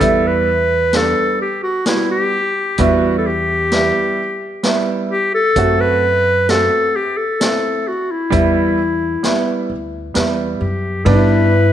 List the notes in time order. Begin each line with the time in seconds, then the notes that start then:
Already playing: A4
0.00 E2 G3 B3 E4, kick, closed hi-hat
0.27 B4
0.93 G3 B3 D4 A4, snare, closed hi-hat
1.41 G4
1.63 F#4
1.86 G3 B3 E4 F#4, snare, closed hi-hat
2.11 G4
2.78 E2 G3 B3 E4 F#4, kick, closed hi-hat
3.18 A4
3.27 G4
3.72 G3 B3 E4, snare, closed hi-hat
4.63 G3 B3 E4, snare, closed hi-hat
5.09 G4
5.34 A4
5.56 F#2 A3 C4 F#4, kick, closed hi-hat
5.80 B4
6.49 A3 C4 F#4 A4, snare, closed hi-hat
6.96 G4
7.17 A4
7.40 A3 C4 E4, snare, closed hi-hat
7.88 F#4
8.11 E4
8.30 E2 G3 B3 E4, kick, closed hi-hat
9.23 G3 B3 E4, snare, closed hi-hat
9.70 D2
10.14 E2 G3 B3 E4, snare, closed hi-hat
10.59 F#2 G4
11.05 G2 G3 B3 D4 E4 B4, kick, ride